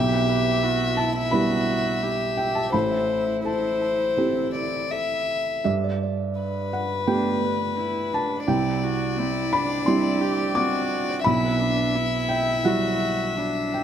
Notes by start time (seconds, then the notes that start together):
Already playing: B1 E4 G4 E5 G5
0.12 B4
0.29 B4
0.62 E4 F#4
0.97 E4 E5 A5
1.31 G3 B3 E4 F#4 B5
2.03 E4 G4
2.37 G5
2.55 E5 A5
2.72 A1 E4 A4 C5 B5
2.91 E5
3.09 E5
3.44 A4 C5 A5
3.81 A5
4.17 C4 E4 G4 A4
4.55 C5 D5
4.91 A4 E5
5.64 G2 D4 E5
5.84 D5
6.03 D5
6.41 B4
6.73 F#5
7.07 A3 B3 D4 G4 G5
7.44 B3 B4
7.78 E4
8.13 D4 A5
8.48 C2 C4 E4 D5 G5
8.83 F#4
9.18 C4 E4
9.53 D4 C5 B5
9.86 G3 C4 D4 E4 C6
10.21 E4 G4
10.55 C4 F#4 D6
11.09 C5
11.24 B1 E4 E5 B5
11.44 B4
11.59 D4 B4
11.95 E4
12.29 E5 G5
12.65 F#3 G3 E4 F#4 F#5
13.37 D4 E4
13.74 G5